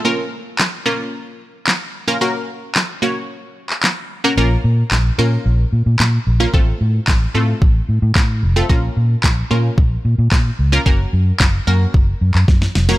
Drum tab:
CP |----x-------x---|----x------xx---|----x-------x---|----x-------x---|
SD |----o-------o---|----o-------o---|----o-------o---|----o-------o---|
BD |----------------|----------------|----------------|o---o---o---o---|

CP |----x-------x---|----x------x----|
SD |----o-------o---|----o-------oooo|
BD |o---o---o---o---|o---o---o---o---|